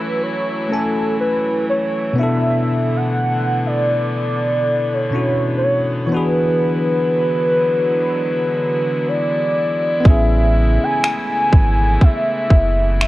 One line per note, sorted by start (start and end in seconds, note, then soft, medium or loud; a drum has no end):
0.00 6.08 E3 medium
0.00 2.14 F#3 medium
0.00 0.64 A3 medium
0.00 6.07 A3 medium
0.00 0.66 C#4 medium
0.00 0.67 E4 medium
0.00 2.14 E4 medium
0.00 0.24 B4 medium
0.00 0.69 G#5 medium
0.23 0.71 C#5 loud
0.69 2.17 A3 soft
0.69 2.18 C#4 soft
0.69 2.19 E4 soft
0.69 1.17 A4 medium
0.73 2.20 G#5 medium
1.20 1.66 B4 medium
1.70 2.15 C#5 medium
2.13 5.07 B2 medium
2.13 5.08 B3 medium
2.18 6.08 D3 medium
2.18 10.01 B3 medium
2.18 5.09 D4 medium
2.18 5.10 E4 medium
2.18 2.98 E5 loud
2.23 5.12 A4 medium
2.96 3.68 F#5 loud
3.67 4.95 D5 loud
4.94 5.56 C#5 loud
5.11 6.10 B2 soft
5.11 6.11 C#4 soft
5.11 6.11 D4 soft
5.11 6.12 E4 soft
5.16 6.13 F#4 soft
5.57 5.65 C5 medium
5.63 6.05 C#5 medium
6.06 9.99 E3 medium
6.06 9.99 B3 medium
6.06 6.14 C#5 medium
6.11 10.01 D3 medium
6.11 10.01 F#3 medium
6.11 13.08 G#3 medium
6.11 10.01 D4 medium
6.11 13.08 E4 medium
6.11 10.02 F#4 medium
6.11 9.10 B4 loud
6.17 10.04 G#4 medium
9.08 10.08 D5 loud
10.00 13.08 B3 medium
10.00 13.08 C#4 medium
10.05 10.79 A1 medium
10.05 13.08 C#3 medium
10.05 13.08 E3 medium
10.05 13.08 A3 medium
10.05 13.08 E4 medium
10.05 10.85 E5 loud
10.05 kick loud
10.10 13.08 G#4 medium
10.84 11.04 G#5 loud
11.04 12.05 G#5 loud
11.04 finger snap loud
11.53 11.98 G#1 medium
11.53 kick loud
12.01 13.01 E5 loud
12.01 kick medium
12.50 13.08 F#1 medium
12.50 kick medium
13.01 13.08 E5 loud
13.01 finger snap loud